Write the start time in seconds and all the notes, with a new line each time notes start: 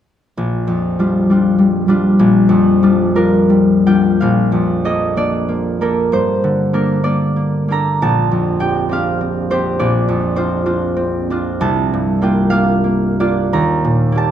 0.37 A#1
0.67 F2
0.99 G3 D4 F4
1.30 G3 D4 F4
1.59 G3
1.88 G3 D4 F4
2.19 A#1
2.49 F2
2.83 G3 D4 F4
3.15 G3 D4 F4 A#4
3.50 G3
3.86 G3 D4 F4 G5
4.21 A#1 F5
4.52 F2
4.85 A#3 D4 A4 D#5
5.17 A#3 D4 A4 D5
5.49 A#3
5.81 A#3 D4 A4 A#4
6.12 G2 C5
6.44 D3
6.73 A#3 D4 A4 A#4
7.04 A#3 D4 A4 D5
7.36 A#3
7.68 A#3 D4 A4 A#5
8.02 A#1 A5
8.32 F2
8.60 C4 D4 G4 G5
8.89 C4 D4 G4 F5
9.21 C4
9.50 C4 D4 G4 C5
9.79 A#1 D5
10.09 F2
10.36 C4 D4 F4 C5
10.66 C4 D4 F4
10.97 C4
11.30 C4 D4 F4
11.61 C2 A5
11.94 G2
12.22 A#3 D4 F4 G5
12.50 A#3 D4 F4 F5
12.84 A#3
13.20 A#3 D4 F4 D5
13.53 D#2 A#5
13.84 A#2
14.12 A#3 D4 G4
14.18 A5